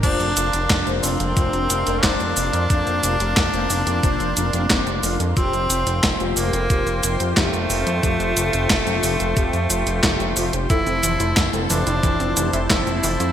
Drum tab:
CC |x---------------|----------------|----------------|----------------|
HH |xxxxxxoxxxxxxxox|xxxxxxoxxxxxxxox|xxxxxxoxxxxxxxox|xxxxxxoxxxxxxxox|
SH |xxxxxxxxxxxxxxxx|xxxxxxxxxxxxxxxx|xxxxxxxxxxxxxxxx|xxxxxxxxxxxxxxxx|
CP |----x-------x---|----x-------x---|----x-------x---|----x-------x---|
SD |----o-------o---|----o-------o---|----o-------o---|----o-------o---|
BD |o---o---o---o---|o---o---o---o---|o---o---o---o---|o---o---o---o---|

CC |----------------|
HH |xxxxxxoxxxxxxxox|
SH |xxxxxxxxxxxxxxxx|
CP |----x-------x---|
SD |----o-------o---|
BD |o---o---o---o---|